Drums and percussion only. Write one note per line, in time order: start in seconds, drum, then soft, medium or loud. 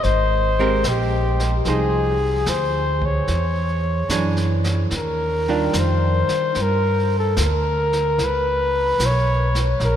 0.03 brush sweep soft
0.03 snare soft
0.84 snare medium
0.84 hi-hat pedal soft
1.40 snare soft
1.65 brush sweep soft
1.65 snare soft
2.46 snare soft
2.46 hi-hat pedal soft
3.02 kick soft
3.27 brush sweep soft
3.27 snare soft
4.09 snare soft
4.09 hi-hat pedal soft
4.36 snare soft
4.64 snare soft
4.91 brush sweep soft
4.91 snare soft
5.73 snare soft
5.73 hi-hat pedal medium
6.29 snare soft
6.55 brush sweep soft
6.55 snare soft
7.37 snare soft
7.37 hi-hat pedal soft
7.93 snare soft
8.19 brush sweep soft
8.19 snare soft
8.99 snare soft
8.99 hi-hat pedal soft
9.55 snare soft
9.80 brush sweep soft
9.80 snare soft